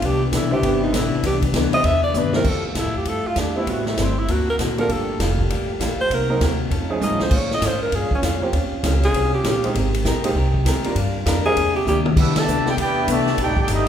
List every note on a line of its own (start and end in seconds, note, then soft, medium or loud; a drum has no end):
0.00 0.31 C2 medium
0.00 0.23 C3 medium
0.00 2.28 D3 medium
0.00 2.28 E3 medium
0.00 0.23 E3 soft
0.00 2.28 D4 medium
0.00 2.28 B4 medium
0.00 kick soft
0.00 ride medium
0.05 0.23 B3 medium
0.05 0.24 D4 medium
0.05 0.23 G4 loud
0.32 0.62 B1 medium
0.32 0.53 C3 medium
0.32 0.53 E3 medium
0.32 0.53 B3 medium
0.32 0.53 D4 medium
0.32 kick soft
0.32 snare medium
0.32 hi-hat pedal medium
0.32 ride medium
0.36 0.52 E4 medium
0.51 0.91 D3 medium
0.51 0.91 G3 medium
0.51 0.91 B3 medium
0.51 0.91 C4 medium
0.51 0.91 E4 medium
0.51 0.81 G4 loud
0.62 0.92 G1 medium
0.62 0.83 C3 medium
0.62 0.84 E3 medium
0.62 0.84 B3 medium
0.62 0.84 D4 medium
0.62 kick soft
0.62 ride medium
0.83 0.97 D#4 medium
0.93 1.10 A1 loud
0.93 1.14 C3 medium
0.93 1.14 E3 medium
0.93 1.14 B3 medium
0.93 1.14 D4 medium
0.93 1.25 E4 medium
0.93 kick soft
0.93 snare medium
0.93 hi-hat pedal medium
0.93 ride medium
1.13 muted upright bass stroke soft
1.23 1.53 C2 loud
1.23 1.44 C3 soft
1.23 1.44 E3 medium
1.23 1.45 B3 medium
1.23 1.45 D4 medium
1.23 1.37 G4 medium
1.23 kick soft
1.23 snare soft
1.23 ride medium
1.42 kick medium
1.42 ride medium
1.53 1.83 D2 medium
1.53 1.74 C3 medium
1.53 1.75 E3 medium
1.53 1.75 B3 medium
1.53 1.75 D4 medium
1.53 kick soft
1.53 snare medium
1.53 hi-hat pedal medium
1.53 ride medium
1.73 1.83 D3 medium
1.73 1.83 G3 medium
1.73 1.83 B3 medium
1.73 1.84 C4 medium
1.73 1.84 E4 medium
1.73 1.87 D#5 loud
1.73 ride medium
1.84 2.14 E2 medium
1.84 2.05 C3 medium
1.84 2.06 E3 medium
1.84 2.06 B3 medium
1.84 2.06 D4 medium
1.84 2.03 E5 loud
1.84 kick soft
1.84 ride medium
2.03 2.19 D5 medium
2.14 2.44 G2 loud
2.14 2.36 C3 medium
2.14 2.36 E3 medium
2.14 2.36 B3 medium
2.14 2.36 D4 medium
2.14 2.35 B4 medium
2.14 hi-hat pedal medium
2.14 mid tom medium
2.33 2.44 F3 medium
2.33 2.44 G3 medium
2.33 2.45 A3 medium
2.33 2.45 C4 medium
2.33 2.45 E4 medium
2.33 2.50 A#4 loud
2.33 snare medium
2.44 2.62 F2 medium
2.44 2.65 F3 soft
2.44 4.26 G3 medium
2.44 3.66 A3 medium
2.44 2.66 A3 soft
2.44 3.66 E4 medium
2.44 2.66 E4 soft
2.44 3.66 F4 medium
2.44 2.67 G4 medium
2.44 kick medium
2.44 crash medium
2.49 2.66 A4 medium
2.63 2.81 C4 soft
2.63 muted upright bass stroke soft
2.75 2.86 A2 medium
2.75 2.96 F3 medium
2.75 2.96 A3 medium
2.75 2.96 E4 medium
2.75 2.97 G4 medium
2.75 kick soft
2.75 snare medium
2.75 hi-hat pedal medium
2.75 ride medium
2.79 2.96 E4 medium
2.85 2.95 F2 medium
2.95 3.05 E2 medium
2.95 3.10 G4 medium
3.05 3.23 G2 medium
3.05 3.27 F3 medium
3.05 3.27 A3 soft
3.05 3.27 E4 medium
3.05 3.29 A4 loud
3.05 kick soft
3.05 ride medium
3.09 3.28 G4 medium
3.25 3.42 F4 medium
3.25 muted upright bass stroke soft
3.36 3.66 E2 medium
3.36 3.57 F3 medium
3.36 3.58 A3 medium
3.36 3.58 E4 medium
3.36 kick soft
3.36 snare medium
3.36 hi-hat pedal medium
3.36 ride medium
3.40 3.57 D4 medium
3.40 3.58 G4 medium
3.56 3.95 G3 medium
3.56 3.95 A3 medium
3.56 3.95 B3 medium
3.56 3.96 C4 medium
3.56 3.96 E4 medium
3.56 3.72 E4 medium
3.67 3.96 A1 medium
3.67 3.88 A2 medium
3.67 4.28 C3 medium
3.67 3.89 G3 soft
3.67 4.28 A3 medium
3.67 4.27 E4 medium
3.67 3.88 F#4 medium
3.67 kick soft
3.67 ride medium
3.71 3.89 C4 soft
3.71 3.89 E4 medium
3.86 4.03 A3 medium
3.86 snare medium
3.97 4.27 G1 loud
3.97 4.18 A2 medium
3.97 4.19 G3 medium
3.97 4.19 C4 medium
3.97 4.19 E4 medium
3.97 kick soft
3.97 snare medium
3.97 hi-hat pedal medium
3.97 ride medium
4.02 4.21 C4 medium
4.19 4.33 E4 medium
4.28 4.57 D2 medium
4.28 4.48 D3 medium
4.28 4.89 D3 medium
4.28 4.88 A#3 medium
4.28 4.49 A#3 medium
4.28 4.88 C4 medium
4.28 4.49 C4 medium
4.28 4.89 F#4 medium
4.28 4.49 F#4 medium
4.28 kick soft
4.28 ride medium
4.32 4.49 F#4 medium
4.50 4.56 A#4 loud
4.58 4.88 A#1 loud
4.58 4.79 D3 medium
4.58 4.79 A#3 medium
4.58 4.79 C4 medium
4.58 4.80 F#4 medium
4.58 kick soft
4.58 snare medium
4.58 hi-hat pedal medium
4.58 ride medium
4.78 5.17 G3 medium
4.78 5.17 A#3 medium
4.78 5.17 D4 medium
4.78 5.18 F4 medium
4.78 5.18 A4 medium
4.78 4.94 A#4 loud
4.78 ride medium
4.89 5.18 G1 medium
4.89 6.09 F3 medium
4.89 5.09 G3 medium
4.89 6.09 A3 medium
4.89 6.69 A#3 medium
4.89 5.09 A#3 soft
4.89 5.10 F4 soft
4.89 6.09 G4 medium
4.89 5.10 A4 medium
4.89 5.21 A4 medium
4.89 kick soft
4.89 ride medium
5.19 5.49 F1 medium
5.19 5.40 G3 medium
5.19 5.40 A#3 medium
5.19 5.40 F4 medium
5.19 5.40 A4 medium
5.19 kick soft
5.19 snare medium
5.19 hi-hat pedal medium
5.19 ride medium
5.38 kick medium
5.49 5.67 A1 medium
5.49 5.70 G3 medium
5.49 5.70 A#3 medium
5.49 5.71 F4 medium
5.49 5.71 A4 medium
5.49 kick soft
5.49 ride medium
5.69 muted upright bass stroke soft
5.80 5.97 A#1 loud
5.80 6.00 G3 medium
5.80 6.00 A#3 medium
5.80 6.01 F4 medium
5.80 6.01 A4 medium
5.80 kick soft
5.80 snare medium
5.80 hi-hat pedal medium
5.80 ride medium
5.99 6.16 C5 loud
5.99 muted upright bass stroke soft
6.10 6.40 C2 medium
6.10 6.30 C3 soft
6.10 7.31 D#3 medium
6.10 6.31 F#3 soft
6.10 6.31 A#3 soft
6.10 6.71 C4 medium
6.10 6.32 D#4 medium
6.10 6.71 F#4 medium
6.10 kick soft
6.10 ride medium
6.14 6.43 A#4 medium
6.30 6.40 F#3 medium
6.30 6.40 A#3 medium
6.30 6.40 C4 medium
6.30 6.40 D#4 medium
6.30 6.40 A#4 medium
6.40 6.70 D#2 medium
6.40 6.61 C3 medium
6.40 6.61 F#3 medium
6.40 6.61 A#3 medium
6.40 6.61 D#4 medium
6.40 kick soft
6.40 snare medium
6.40 hi-hat pedal medium
6.40 ride medium
6.70 6.99 F2 medium
6.70 6.91 F3 medium
6.70 7.31 A3 medium
6.70 7.29 C#4 medium
6.70 6.91 C#4 medium
6.70 6.91 D#4 medium
6.70 9.72 F4 medium
6.70 6.92 A4 medium
6.70 kick soft
6.70 ride medium
6.90 7.29 F3 medium
6.90 7.29 A3 medium
6.90 7.29 C#4 medium
6.90 7.30 D#4 medium
6.90 7.30 G#4 medium
7.00 7.12 A2 medium
7.00 7.22 F3 medium
7.00 7.22 C#4 medium
7.00 7.22 D#4 medium
7.00 7.23 A4 medium
7.00 7.23 D#5 medium
7.00 hi-hat pedal medium
7.00 high tom medium
7.11 7.20 F2 medium
7.19 7.30 D#2 medium
7.19 7.38 C5 loud
7.19 snare medium
7.29 7.61 A#2 medium
7.29 7.52 A#2 medium
7.29 8.51 G#3 medium
7.29 8.51 A#3 medium
7.29 9.71 C#4 medium
7.29 kick medium
7.29 crash medium
7.33 7.53 G#3 medium
7.33 7.53 C#4 soft
7.33 7.53 F4 medium
7.33 7.53 C#5 medium
7.51 7.68 D#5 loud
7.51 snare medium
7.61 7.91 G#2 medium
7.61 7.83 A#2 medium
7.61 7.83 G#3 medium
7.61 7.84 C#4 medium
7.61 kick soft
7.61 snare medium
7.61 hi-hat pedal medium
7.61 ride medium
7.65 7.84 F4 medium
7.65 7.82 C5 medium
7.83 7.97 A#4 medium
7.92 8.10 G2 medium
7.92 8.13 A#2 medium
7.92 8.13 G#3 medium
7.92 8.14 C#4 medium
7.92 8.14 F4 medium
7.92 8.13 G#4 medium
7.92 kick soft
7.92 ride medium
8.10 muted upright bass stroke soft
8.10 kick medium
8.15 8.21 C#4 medium
8.22 8.52 F2 medium
8.22 8.43 A#2 medium
8.22 8.44 G#3 medium
8.22 8.44 C#4 medium
8.22 8.44 F4 medium
8.22 kick soft
8.22 snare medium
8.22 hi-hat pedal medium
8.22 ride medium
8.42 8.52 F3 medium
8.42 8.52 A#3 medium
8.42 8.52 C4 medium
8.42 8.52 C#4 medium
8.42 8.53 G4 medium
8.53 8.71 D#2 medium
8.53 8.73 D#3 medium
8.53 9.74 F3 medium
8.53 9.74 C4 medium
8.53 8.74 C#4 medium
8.53 8.74 G4 medium
8.53 8.74 C5 medium
8.53 kick soft
8.53 ride medium
8.72 muted upright bass stroke soft
8.83 9.13 C#2 loud
8.83 9.04 D#3 medium
8.83 9.04 C#4 medium
8.83 9.04 G4 medium
8.83 9.05 C5 medium
8.83 kick soft
8.83 snare medium
8.83 hi-hat pedal medium
8.83 ride medium
9.03 9.32 G#4 loud
9.03 snare soft
9.03 ride medium
9.14 9.43 C2 medium
9.14 9.34 D#3 medium
9.14 9.34 C#4 soft
9.14 9.35 G4 medium
9.14 9.35 C5 medium
9.14 kick soft
9.14 ride medium
9.34 9.44 G4 medium
9.44 9.73 A#1 medium
9.44 9.64 D#3 medium
9.44 9.65 C#4 medium
9.44 9.65 G4 medium
9.44 9.65 C5 medium
9.44 kick soft
9.44 snare medium
9.44 hi-hat pedal medium
9.44 ride medium
9.48 9.64 G4 medium
9.64 9.74 G#3 medium
9.64 9.74 A#3 medium
9.64 9.74 C4 medium
9.64 9.74 D#4 medium
9.64 9.74 G4 medium
9.64 ride medium
9.74 10.04 G#1 loud
9.74 10.95 C3 medium
9.74 9.95 G#3 medium
9.74 10.95 G#3 medium
9.74 11.99 A#3 medium
9.74 9.96 C4 medium
9.74 10.95 G4 medium
9.74 9.96 G4 medium
9.74 9.96 A#4 medium
9.74 kick soft
9.74 ride medium
9.94 ride medium
10.05 10.34 A#1 medium
10.05 10.25 G#3 medium
10.05 10.25 C4 medium
10.05 10.26 G4 medium
10.05 10.26 A#4 medium
10.05 kick soft
10.05 snare medium
10.05 hi-hat pedal medium
10.24 10.34 G#3 medium
10.24 10.34 A#3 medium
10.24 10.34 C4 medium
10.24 10.34 D#4 medium
10.24 10.34 G4 medium
10.24 ride medium
10.35 10.64 C2 loud
10.35 10.56 G#3 medium
10.35 10.56 C4 medium
10.35 10.56 G4 medium
10.35 10.57 A#4 medium
10.35 kick soft
10.54 kick medium
10.65 10.83 D#2 loud
10.65 10.86 G#3 medium
10.65 10.86 C4 medium
10.65 10.86 G4 medium
10.65 10.87 A#4 medium
10.65 kick soft
10.65 snare medium
10.65 hi-hat pedal medium
10.65 ride medium
10.84 10.94 G3 medium
10.84 10.95 A#3 medium
10.84 10.95 D4 medium
10.84 10.95 F4 medium
10.84 10.95 A#4 medium
10.84 muted upright bass stroke soft
10.84 ride medium
10.95 11.25 G2 medium
10.95 11.99 D3 medium
10.95 11.16 G3 medium
10.95 11.56 G3 medium
10.95 11.16 D4 medium
10.95 11.56 F4 medium
10.95 11.17 F4 medium
10.95 11.17 A#4 medium
10.95 kick soft
10.95 ride medium
11.26 11.55 F2 loud
11.26 11.46 G3 medium
11.26 11.46 D4 medium
11.26 11.47 F4 medium
11.26 11.47 A#4 medium
11.26 kick soft
11.26 snare medium
11.26 hi-hat pedal medium
11.26 ride medium
11.46 11.56 G3 medium
11.46 11.56 C4 medium
11.46 11.56 D4 medium
11.46 11.56 E4 medium
11.46 11.73 G#4 loud
11.46 11.56 A#4 medium
11.56 11.86 E2 medium
11.56 11.76 C3 medium
11.56 11.77 A#3 medium
11.56 11.99 C4 medium
11.56 11.77 D4 medium
11.56 11.99 E4 medium
11.56 11.78 E4 medium
11.56 kick soft
11.56 ride medium
11.76 11.86 G4 medium
11.86 12.16 D2 loud
11.86 12.07 C3 medium
11.86 12.07 A#3 medium
11.86 12.07 D4 medium
11.86 12.08 E4 medium
11.86 11.99 G4 loud
11.86 hi-hat pedal medium
11.86 mid tom medium
12.06 mid tom medium
12.16 12.34 C2 medium
12.16 12.37 C3 soft
12.16 13.36 D3 medium
12.16 12.37 E3 soft
12.16 12.34 G3 medium
12.16 12.34 B3 medium
12.16 13.88 B3 medium
12.16 12.37 B3 soft
12.16 13.36 D4 medium
12.16 12.38 D4 medium
12.16 12.36 D4 medium
12.16 13.36 E4 medium
12.16 12.34 E4 medium
12.16 12.36 G4 medium
12.16 12.36 B4 medium
12.16 12.36 E5 medium
12.16 kick medium
12.16 crash medium
12.35 12.66 B2 medium
12.35 12.66 E3 medium
12.35 12.66 A3 medium
12.35 12.67 G4 medium
12.35 12.67 D5 medium
12.35 12.68 E5 medium
12.35 12.68 A5 loud
12.35 muted upright bass stroke soft
12.35 snare loud
12.35 ride medium
12.48 12.77 D2 medium
12.48 12.67 C3 medium
12.48 12.68 E3 medium
12.48 12.68 B3 medium
12.48 12.68 D4 medium
12.48 hi-hat pedal medium
12.65 12.70 B3 medium
12.65 12.70 E4 medium
12.65 12.71 G4 medium
12.65 12.73 D5 medium
12.65 snare medium
12.69 12.74 E4 medium
12.69 12.74 B4 medium
12.69 12.74 G5 medium
12.77 13.07 E2 medium
12.77 12.97 C3 medium
12.77 12.98 E3 medium
12.77 13.06 B3 medium
12.77 12.98 B3 medium
12.77 12.98 D4 medium
12.77 13.06 E4 medium
12.77 13.06 G4 medium
12.77 13.07 B4 medium
12.77 13.07 D5 medium
12.77 13.07 G5 loud
12.77 kick soft
12.77 ride medium
12.81 13.08 E4 medium
13.07 13.37 C2 medium
13.07 13.37 B2 medium
13.07 13.27 C3 medium
13.07 13.28 E3 medium
13.07 13.37 E3 medium
13.07 13.37 A3 medium
13.07 13.28 B3 medium
13.07 13.28 D4 medium
13.07 kick soft
13.07 hi-hat pedal medium
13.07 ride medium
13.11 13.38 G4 medium
13.11 13.38 D5 medium
13.11 13.37 E5 medium
13.11 13.38 A5 medium
13.26 snare medium
13.38 13.48 B1 medium
13.38 13.58 B2 soft
13.38 13.88 D#3 medium
13.38 13.58 G3 soft
13.38 13.88 A3 medium
13.38 13.59 A3 soft
13.38 13.59 D#4 medium
13.38 13.88 G4 medium
13.38 kick soft
13.38 ride medium
13.42 13.57 A3 medium
13.42 13.58 D#4 medium
13.42 13.58 G4 medium
13.42 13.58 A4 medium
13.42 13.58 D5 medium
13.42 13.58 G5 medium
13.48 13.57 A1 medium
13.57 13.67 G1 medium
13.57 13.68 A3 medium
13.57 13.68 D#4 medium
13.57 13.68 G4 medium
13.57 kick medium
13.61 13.70 D#4 medium
13.61 13.70 A4 medium
13.61 13.70 D5 medium
13.61 13.70 G5 medium
13.68 13.88 G1 loud
13.68 13.88 B2 medium
13.68 13.88 G3 medium
13.68 13.88 A3 medium
13.68 13.88 D#4 medium
13.68 kick soft
13.68 hi-hat pedal medium
13.68 ride medium
13.72 13.88 G3 medium
13.72 13.88 A3 medium
13.72 13.88 D4 medium
13.72 13.88 D#4 medium
13.72 13.88 G4 medium
13.72 13.88 D#5 medium